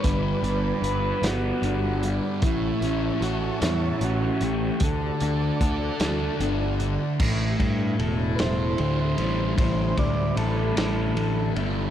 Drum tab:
CC |------|------|------|x-----|
RD |------|------|------|-xxxxx|
HH |xxxxxx|xxxxxx|xxxxxx|------|
SD |---o--|---o--|---o--|---o--|
BD |o-----|o-----|o-o---|oo----|

CC |------|
RD |xxxxxx|
HH |------|
SD |---o--|
BD |oo----|